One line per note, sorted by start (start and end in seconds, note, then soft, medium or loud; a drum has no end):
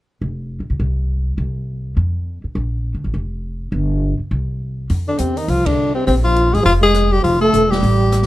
0.21 0.58 F1 medium
0.60 0.69 A1 soft
0.70 0.79 C2 soft
0.80 1.35 C2 medium
1.38 1.94 C2 medium
1.97 2.41 F2 medium
2.44 muted upright bass stroke soft
2.55 2.92 A#1 medium
2.94 3.04 D2 soft
3.04 3.13 A1 medium
3.14 3.70 F1 medium
3.72 4.16 G1 medium
4.19 muted upright bass stroke soft
4.31 4.87 C2 medium
4.89 5.17 F2 medium
4.89 open hi-hat soft
5.08 5.21 D3 medium
5.08 5.20 D4 medium
5.18 5.47 E2 medium
5.18 5.39 C3 medium
5.18 5.39 C4 medium
5.18 closed hi-hat soft
5.37 5.50 D#3 medium
5.37 5.51 D#4 medium
5.37 open hi-hat soft
5.48 6.04 C2 medium
5.48 5.68 F3 medium
5.48 5.68 F4 medium
5.48 open hi-hat soft
5.66 5.95 D3 medium
5.66 5.94 D4 medium
5.66 kick medium
5.66 ride medium
5.95 6.06 C3 medium
5.95 6.06 C4 medium
6.06 6.51 A#1 medium
6.06 6.15 C3 medium
6.06 6.15 C4 medium
6.06 open hi-hat soft
6.24 6.54 F3 medium
6.24 6.56 F4 medium
6.36 closed hi-hat soft
6.52 6.65 G#1 medium
6.52 6.62 G#3 medium
6.52 6.65 G#4 medium
6.52 open hi-hat soft
6.63 7.21 F1 medium
6.63 6.72 F3 medium
6.63 6.74 F4 medium
6.63 open hi-hat soft
6.82 7.12 G#3 medium
6.82 7.14 G#4 medium
6.94 cross-stick medium
6.94 closed hi-hat soft
7.11 7.22 G3 medium
7.11 7.23 G4 medium
7.22 7.51 F1 medium
7.22 7.40 F3 medium
7.22 7.41 F4 medium
7.22 open hi-hat soft
7.40 7.71 A3 medium
7.40 7.72 A4 medium
7.54 7.81 E1 medium
7.54 closed hi-hat soft
7.70 8.26 G3 medium
7.70 8.26 G4 medium
7.70 snare soft
7.83 8.26 A1 medium
7.83 open hi-hat soft
8.12 cross-stick soft
8.12 closed hi-hat soft
8.22 snare soft